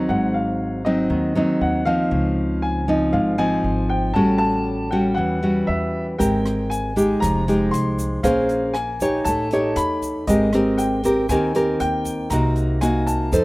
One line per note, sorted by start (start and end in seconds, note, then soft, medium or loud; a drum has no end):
0.00 0.82 F#3 soft
0.00 0.82 C4 medium
0.00 0.83 D#4 medium
0.09 1.07 G#1 medium
0.09 1.09 G#2 medium
0.09 0.35 F#5 medium
0.34 0.87 F5 medium
0.85 1.33 F#3 medium
0.85 1.33 C4 medium
0.85 1.33 D#4 medium
0.85 1.64 D#5 medium
1.10 1.58 D#2 medium
1.10 2.10 D#3 medium
1.35 1.83 F#3 medium
1.35 1.83 C4 medium
1.35 1.84 D#4 medium
1.61 2.09 D#2 medium
1.61 1.88 F#5 medium
1.85 2.85 F3 medium
1.85 2.85 C4 medium
1.85 2.85 D#4 medium
1.85 2.65 F5 loud
2.11 3.10 C#2 medium
2.11 3.11 C#3 medium
2.62 3.16 G#5 medium
2.88 3.36 F3 medium
2.88 3.36 C4 medium
2.88 3.36 D#4 medium
3.13 3.61 G#1 medium
3.13 4.13 G#2 medium
3.13 3.37 F5 medium
3.38 4.12 F3 medium
3.38 4.12 C4 medium
3.38 4.12 D#4 medium
3.38 3.87 G#5 medium
3.64 4.12 G#1 medium
3.89 4.17 G5 medium
4.14 5.14 A1 medium
4.14 5.15 A2 medium
4.14 4.88 G3 medium
4.14 4.88 C#4 medium
4.14 4.89 F#4 medium
4.14 4.37 A5 medium
4.38 4.93 A5 loud
4.91 5.40 G3 medium
4.91 5.40 C#4 medium
4.91 5.40 F#4 medium
4.91 5.18 G5 medium
5.14 5.65 E2 medium
5.14 6.17 E3 medium
5.14 5.69 F#5 medium
5.43 6.16 G3 medium
5.43 6.16 C#4 soft
5.43 6.16 F#4 medium
5.67 6.16 E2 medium
5.67 6.04 E5 medium
6.18 7.18 G#1 medium
6.18 6.95 G#3 medium
6.18 6.92 C4 medium
6.18 6.92 G4 medium
6.18 6.92 A#4 medium
6.18 6.67 G5 medium
6.18 kick medium
6.18 closed hi-hat soft
6.18 shaker medium
6.45 cross-stick medium
6.45 closed hi-hat soft
6.45 shaker soft
6.70 7.23 G#5 medium
6.70 closed hi-hat soft
6.70 shaker medium
6.96 7.43 G#3 medium
6.96 7.44 D#4 medium
6.96 7.44 G4 medium
6.96 kick soft
6.96 closed hi-hat soft
6.96 shaker medium
7.20 7.69 F1 medium
7.20 8.21 F3 medium
7.20 7.74 A#5 medium
7.20 kick medium
7.20 cross-stick medium
7.20 closed hi-hat soft
7.20 shaker medium
7.48 8.20 G#3 medium
7.48 8.20 D#4 medium
7.48 8.21 G4 medium
7.48 closed hi-hat soft
7.48 shaker soft
7.71 8.20 C2 medium
7.71 8.19 C6 medium
7.71 closed hi-hat soft
7.71 shaker soft
7.98 kick soft
7.98 closed hi-hat soft
7.98 shaker medium
8.23 9.22 A#1 medium
8.23 9.23 A#3 medium
8.23 8.75 C#4 medium
8.23 8.75 G#4 medium
8.23 8.75 C5 medium
8.23 8.76 F5 medium
8.23 kick medium
8.23 cross-stick medium
8.23 closed hi-hat soft
8.23 shaker medium
8.49 closed hi-hat soft
8.49 shaker soft
8.74 9.22 G#5 medium
8.74 cross-stick medium
8.74 closed hi-hat soft
9.00 9.48 D#4 medium
9.00 9.48 G4 medium
9.00 9.48 C#5 medium
9.00 kick soft
9.00 closed hi-hat soft
9.00 shaker medium
9.24 9.73 A1 medium
9.24 10.26 A3 medium
9.24 9.78 A5 medium
9.24 kick medium
9.24 closed hi-hat soft
9.24 shaker medium
9.51 10.24 D#4 medium
9.51 10.25 G4 medium
9.51 10.25 C#5 medium
9.51 closed hi-hat soft
9.51 shaker soft
9.76 10.24 E2 medium
9.76 10.29 B5 medium
9.76 cross-stick medium
9.76 closed hi-hat soft
9.76 shaker soft
10.02 kick soft
10.02 closed hi-hat soft
10.02 shaker medium
10.27 11.25 G#1 medium
10.27 11.28 G#3 medium
10.27 10.49 C4 medium
10.27 10.50 G4 medium
10.27 10.50 A#4 medium
10.27 10.80 D#5 medium
10.27 kick medium
10.27 closed hi-hat soft
10.27 shaker medium
10.53 11.01 C4 medium
10.53 11.00 G4 medium
10.53 11.01 A#4 medium
10.53 cross-stick medium
10.53 closed hi-hat soft
10.53 shaker soft
10.78 11.30 G5 medium
10.78 closed hi-hat soft
10.78 shaker medium
11.04 11.26 C4 medium
11.04 11.26 G4 medium
11.04 11.26 A#4 medium
11.04 kick soft
11.04 closed hi-hat soft
11.04 shaker medium
11.29 11.77 D#2 medium
11.29 12.29 D#3 medium
11.29 11.52 C4 medium
11.29 11.52 G4 medium
11.29 11.52 A#4 medium
11.29 11.77 G#5 medium
11.29 kick medium
11.29 cross-stick medium
11.29 closed hi-hat soft
11.29 shaker medium
11.55 12.27 C4 medium
11.55 12.28 G4 medium
11.55 12.28 A#4 medium
11.55 closed hi-hat soft
11.55 shaker soft
11.80 12.28 D#2 medium
11.80 12.33 G5 medium
11.80 closed hi-hat soft
12.05 kick soft
12.05 closed hi-hat soft
12.05 shaker medium
12.30 13.29 C2 medium
12.30 13.31 C3 medium
12.30 12.79 A#3 medium
12.30 12.79 D#4 medium
12.30 12.79 F#4 medium
12.30 12.78 A#5 medium
12.30 kick medium
12.30 cross-stick medium
12.30 closed hi-hat soft
12.30 shaker medium
12.56 closed hi-hat soft
12.56 shaker soft
12.81 13.31 A#3 medium
12.81 13.31 D#4 medium
12.81 13.32 F#4 medium
12.81 13.08 G#5 medium
12.81 cross-stick medium
12.81 closed hi-hat soft
12.81 shaker medium
13.06 13.45 A5 medium
13.06 kick soft
13.06 closed hi-hat soft
13.06 shaker medium
13.32 13.45 F2 medium
13.32 13.45 F3 medium
13.32 13.45 D#4 medium
13.32 13.45 A4 soft
13.32 13.45 C5 medium
13.32 kick medium
13.32 closed hi-hat soft
13.32 shaker medium